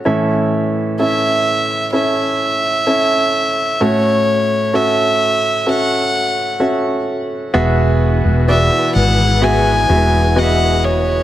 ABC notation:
X:1
M:4/4
L:1/16
Q:1/4=64
K:Emix
V:1 name="Violin"
z4 e4 e8 | c4 e4 f4 z4 | z4 e2 f2 g4 f2 c2 |]
V:2 name="Grand piano"
[CEAe]4 [CEAe]4 [CEAe]4 [CEAe]4 | [CFAe]4 [CFAe]4 [CFAe]4 [CFAe]4 | [B,FGe]4 [B,FGd]4 [B,FGe]2 [B,FGe]2 [B,FG^de]4 |]
V:3 name="Grand piano" clef=bass
[A,,E,]16 | [A,,A,]16 | B,,6 z8 z2 |]
V:4 name="String section"
z16 | z16 | [E,EFGB]16 |]
V:5 name="Fretless electric bass" clef=bass
z16 | z16 | E,,,3 E,,,2 z G,,,4 E,,,6 |]